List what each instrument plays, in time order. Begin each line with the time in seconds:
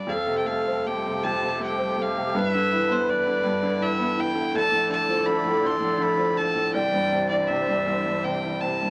Already playing: upright piano G3 B3 D4, fiddle D5
0.07 upright piano F2, string section G3 F4 A4, flute A4, fiddle F5
0.27 upright piano C3
0.38 fiddle G5
0.45 upright piano A3, fiddle F5
0.67 upright piano C4
0.86 upright piano A3, flute G4, fiddle G5
1.06 upright piano C3
1.24 upright piano F2, fiddle A5
1.43 upright piano C3
1.60 upright piano A3, fiddle G5
1.78 upright piano C4
1.97 upright piano A3
2.02 fiddle F5
2.17 upright piano C3
2.34 upright piano G2, string section E4 B4, flute B4
2.38 fiddle E5
2.55 upright piano D3
2.73 upright piano E3
2.90 upright piano B3, fiddle C5
3.09 upright piano E3, fiddle D5
3.27 upright piano D3
3.43 upright piano G2
3.62 upright piano D3
3.81 upright piano E3, fiddle E5
3.99 upright piano B3
4.16 upright piano E3, fiddle G5
4.35 upright piano D3
4.54 upright piano D2, string section F3 D5, flute A4, fiddle A5
4.71 upright piano A2
4.89 upright piano D3, fiddle A5
5.09 upright piano F3
5.25 upright piano D3, fiddle B5
5.44 upright piano A2
5.63 upright piano D2, fiddle C6
5.80 upright piano A2
5.98 upright piano D3
6.02 fiddle B5
6.17 upright piano F3
6.37 upright piano D3, fiddle A5
6.55 upright piano A2
6.73 upright piano C2, string section E3 D4 C5, flute D5, fiddle G5
6.93 upright piano G2
7.12 upright piano C3
7.29 upright piano E3, fiddle D5
7.47 upright piano C3, fiddle E5
7.68 upright piano G2
7.86 upright piano C2
8.06 upright piano G2
8.24 upright piano C3, fiddle G5
8.44 upright piano E3
8.61 upright piano C3, fiddle A5
8.82 upright piano G2